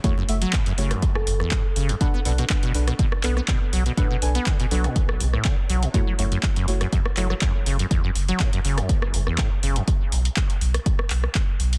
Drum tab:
HH |x-oxxxoxx-o-x-ox|x-oxxxoxx-o-x-ox|x-oxxxoxx-o-x-ox|x-oxxxoxx-o-x-ox|
CP |----x-------x---|----x-----x-x---|----x-------x---|----x-----x-x---|
SD |-------r-r-r----|-------r-r-r----|-------r-r-r----|-------r-r-r----|
BD |o---o---o---o---|o---o---o---o---|o---o---o---o---|o---o---o---o---|

HH |x-oxxxoxx-o-x-ox|x-oxxxoxx-o-x-ox|
CP |----x-------x---|----x-----x-x---|
SD |-------r-r-r----|-------r-r-r----|
BD |o---o---o---o---|o---o---o---o---|